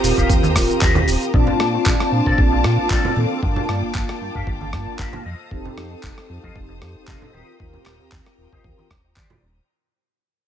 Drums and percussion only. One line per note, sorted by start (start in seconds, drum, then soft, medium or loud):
0.04 open hi-hat loud
0.04 shaker medium
0.18 kick medium
0.18 closed hi-hat soft
0.18 shaker soft
0.29 kick loud
0.29 closed hi-hat medium
0.29 shaker soft
0.43 closed hi-hat soft
0.43 high conga medium
0.43 shaker soft
0.56 kick medium
0.56 cross-stick medium
0.56 open hi-hat loud
0.56 shaker medium
0.70 closed hi-hat soft
0.70 shaker soft
0.81 kick loud
0.81 clap loud
0.81 closed hi-hat medium
0.81 shaker soft
0.95 closed hi-hat soft
0.95 high conga medium
0.95 low conga medium
1.08 open hi-hat loud
1.08 shaker medium
1.22 closed hi-hat soft
1.22 shaker soft
1.34 kick loud
1.47 low conga medium
1.60 cross-stick medium
1.86 kick loud
1.86 clap loud
2.00 cross-stick medium
2.26 kick medium
2.38 kick loud
2.64 cross-stick medium
2.90 kick loud
2.90 clap loud
3.05 low conga medium
3.16 high conga medium
3.43 kick loud
3.56 low conga medium
3.69 cross-stick medium
3.94 kick loud
3.94 clap loud
4.09 cross-stick medium
4.35 kick medium
4.47 kick loud
4.61 high conga medium
4.73 kick medium
4.73 cross-stick medium
4.99 kick loud
4.99 clap loud
5.13 high conga medium
5.13 low conga medium
5.51 kick loud
5.65 low conga medium
5.78 cross-stick medium
6.03 kick loud
6.03 clap loud
6.18 cross-stick medium
6.44 kick medium
6.56 kick medium
6.82 cross-stick medium
7.07 kick loud
7.07 clap loud
7.22 low conga medium
7.34 high conga medium
7.60 kick loud
7.74 low conga medium
7.86 cross-stick medium
7.86 clap medium
8.12 kick loud
8.12 clap loud
8.26 cross-stick medium
8.53 kick medium
8.64 kick medium
8.79 high conga medium
8.91 kick medium
8.91 cross-stick medium
9.16 kick loud
9.16 clap loud
9.30 high conga medium
9.30 low conga medium